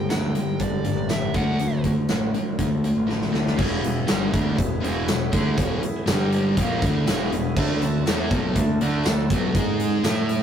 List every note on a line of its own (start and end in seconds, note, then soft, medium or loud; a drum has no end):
0.09 0.32 D2 medium
0.09 0.32 G2 medium
0.09 0.32 D3 medium
0.09 0.61 G5 medium
0.09 snare medium
0.09 closed hi-hat medium
0.09 tambourine medium
0.35 0.58 G2 medium
0.35 0.57 D3 medium
0.35 closed hi-hat medium
0.59 0.94 G1 medium
0.59 0.82 G2 medium
0.59 0.83 D3 medium
0.59 1.11 D5 medium
0.59 kick medium
0.59 closed hi-hat medium
0.84 1.07 G2 medium
0.84 1.07 D3 medium
0.84 closed hi-hat medium
0.96 1.30 A1 medium
1.09 1.32 G2 medium
1.09 1.32 D3 medium
1.09 1.36 E5 medium
1.09 snare loud
1.09 closed hi-hat medium
1.09 tambourine loud
1.34 1.68 D2 medium
1.34 1.58 D3 medium
1.34 1.58 A3 medium
1.34 1.58 D4 medium
1.34 1.82 F#5 medium
1.34 kick medium
1.34 closed hi-hat medium
1.59 1.82 D3 medium
1.59 1.82 A3 medium
1.59 closed hi-hat medium
1.72 1.94 D2 medium
1.84 2.07 D3 medium
1.84 2.07 A3 medium
1.84 kick medium
1.84 closed hi-hat medium
2.09 2.32 A1 medium
2.09 2.32 D3 medium
2.09 2.32 A3 medium
2.09 snare loud
2.09 closed hi-hat medium
2.09 tambourine medium
2.34 2.57 D3 medium
2.34 2.57 A3 medium
2.34 closed hi-hat medium
2.59 2.93 D2 medium
2.59 2.82 D3 medium
2.59 2.82 A3 medium
2.59 kick medium
2.59 closed hi-hat medium
2.84 3.06 D3 medium
2.84 3.07 A3 medium
2.84 closed hi-hat medium
2.97 3.30 A1 medium
3.07 3.30 D3 medium
3.07 3.31 A3 medium
3.07 snare medium
3.22 snare medium
3.29 3.55 D3 medium
3.29 3.50 A3 medium
3.29 3.56 A3 medium
3.29 3.51 B3 medium
3.34 3.56 D2 medium
3.34 3.52 C4 medium
3.34 3.53 D4 medium
3.34 snare medium
3.40 3.55 E4 medium
3.40 3.57 F4 medium
3.46 3.58 G4 medium
3.46 3.60 A4 medium
3.46 snare medium
3.51 3.61 B4 medium
3.51 3.62 C5 medium
3.57 3.82 E1 medium
3.57 3.81 E2 medium
3.57 3.82 B2 medium
3.57 3.82 E3 loud
3.57 6.05 B3 medium
3.57 6.05 E4 medium
3.57 6.05 G#4 medium
3.57 3.64 D5 medium
3.57 kick loud
3.57 crash loud
3.83 4.08 E1 medium
3.83 4.03 E2 medium
3.83 4.03 B2 medium
3.83 closed hi-hat medium
4.07 4.32 G1 medium
4.07 4.32 G2 medium
4.07 4.29 D3 medium
4.07 4.31 G3 loud
4.07 snare loud
4.07 closed hi-hat medium
4.07 tambourine loud
4.30 4.57 D2 medium
4.30 4.56 D3 medium
4.30 4.56 A3 medium
4.30 4.57 D4 loud
4.30 kick loud
4.30 closed hi-hat medium
4.56 4.81 E1 medium
4.56 4.77 E2 medium
4.56 4.77 B2 medium
4.56 kick medium
4.56 closed hi-hat medium
4.80 5.07 E1 medium
4.80 5.05 E2 medium
4.80 5.05 B2 medium
4.80 5.06 E3 loud
4.80 closed hi-hat medium
5.06 5.27 E2 medium
5.06 5.27 B2 medium
5.06 snare loud
5.06 closed hi-hat medium
5.06 tambourine loud
5.10 5.32 E1 medium
5.32 5.56 D2 medium
5.32 5.56 D3 medium
5.32 5.57 A3 medium
5.32 5.57 D4 medium
5.32 kick loud
5.32 closed hi-hat medium
5.57 5.81 E1 medium
5.57 5.81 E2 loud
5.57 5.82 B2 medium
5.57 5.82 E3 loud
5.57 kick loud
5.57 closed hi-hat medium
5.82 muted distorted electric guitar stroke medium
5.82 closed hi-hat medium
6.06 6.55 G1 medium
6.06 6.56 G2 loud
6.06 6.56 D3 loud
6.06 6.56 G3 medium
6.06 6.56 G3 loud
6.06 6.56 D4 medium
6.06 6.56 G4 medium
6.06 snare loud
6.06 closed hi-hat medium
6.06 tambourine loud
6.32 closed hi-hat medium
6.57 6.80 A#1 medium
6.57 6.82 A#2 medium
6.57 6.82 F3 medium
6.57 6.82 A#3 loud
6.57 7.56 B3 medium
6.57 7.56 E4 medium
6.57 7.56 G#4 medium
6.57 kick loud
6.57 closed hi-hat loud
6.82 7.05 D2 medium
6.82 7.06 D3 medium
6.82 7.07 A3 medium
6.82 7.07 D4 medium
6.82 kick loud
6.82 closed hi-hat medium
7.06 7.29 E1 loud
7.06 7.31 E2 medium
7.06 7.31 B2 medium
7.06 7.32 E3 medium
7.06 snare loud
7.06 closed hi-hat medium
7.06 tambourine loud
7.31 7.55 E1 medium
7.31 7.52 E2 medium
7.31 7.52 B2 medium
7.31 closed hi-hat medium
7.56 7.80 D2 medium
7.56 7.81 D3 loud
7.56 9.53 A3 medium
7.56 7.81 A3 loud
7.56 7.81 D4 loud
7.56 9.54 D4 medium
7.56 9.53 A4 medium
7.56 kick loud
7.56 crash loud
7.82 8.05 D2 medium
7.82 8.01 D3 medium
7.82 8.02 A3 medium
7.82 closed hi-hat medium
8.06 8.29 E2 medium
8.06 8.31 E3 medium
8.06 8.31 B3 medium
8.06 8.31 E4 loud
8.06 snare loud
8.06 clap medium
8.06 closed hi-hat medium
8.06 tambourine loud
8.31 8.54 B1 loud
8.31 8.55 B2 medium
8.31 8.56 F#3 medium
8.31 8.56 B3 loud
8.31 kick loud
8.31 clap medium
8.31 closed hi-hat medium
8.56 8.79 D2 medium
8.56 8.76 D3 medium
8.56 8.76 A3 medium
8.56 kick medium
8.56 closed hi-hat loud
8.81 9.04 D2 medium
8.81 9.05 D3 medium
8.81 9.05 A3 medium
8.81 9.05 D4 loud
8.81 closed hi-hat medium
9.04 9.28 D2 medium
9.04 9.26 D3 medium
9.04 9.26 A3 medium
9.04 snare loud
9.04 clap loud
9.04 closed hi-hat medium
9.04 tambourine loud
9.30 9.53 B1 medium
9.30 9.55 B2 medium
9.30 9.55 F#3 medium
9.30 9.55 B3 loud
9.30 kick loud
9.30 closed hi-hat medium
9.55 10.01 G#2 medium
9.55 10.04 G#3 medium
9.55 10.05 G#3 medium
9.55 10.04 D#4 medium
9.55 10.04 D#4 loud
9.55 10.04 G#4 medium
9.55 10.05 G#4 loud
9.55 kick loud
9.55 closed hi-hat medium
9.79 closed hi-hat medium
10.04 10.43 A2 medium
10.04 10.43 A3 medium
10.04 10.43 E4 medium
10.04 10.43 E4 loud
10.04 10.43 A4 loud
10.04 10.43 A4 medium
10.04 snare loud
10.04 clap medium
10.04 closed hi-hat medium
10.04 tambourine loud
10.29 closed hi-hat medium